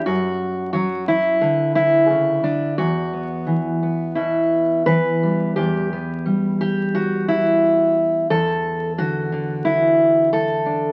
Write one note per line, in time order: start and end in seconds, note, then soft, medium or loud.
0.06 1.37 F#2 medium
0.06 0.72 F#4 loud
0.73 1.37 F#3 medium
0.73 1.07 F#4 medium
1.08 1.74 E4 medium
1.41 2.43 D3 medium
1.75 2.78 E4 loud
2.10 2.44 C#3 medium
2.44 2.78 D3 medium
2.44 2.78 D4 medium
2.78 5.56 E2 medium
2.78 4.15 F#4 medium
3.13 3.81 B3 soft
3.47 4.85 E3 medium
3.83 5.91 B3 soft
4.15 4.87 B2 medium
4.15 4.86 E4 medium
4.86 5.53 E3 medium
4.86 5.56 B4 medium
5.23 5.92 G3 soft
5.56 8.29 E2 medium
5.56 6.60 G4 medium
5.93 8.27 B3 soft
6.26 8.26 G3 medium
6.61 7.28 G4 medium
6.95 7.96 F#4 medium
7.28 8.30 E4 medium
8.30 10.92 E2 medium
8.30 9.64 A4 loud
8.98 9.31 D3 medium
8.98 10.31 F#4 medium
9.32 10.92 D3 soft
9.65 10.31 E4 medium
10.33 10.92 A4 medium
10.66 10.92 D4 soft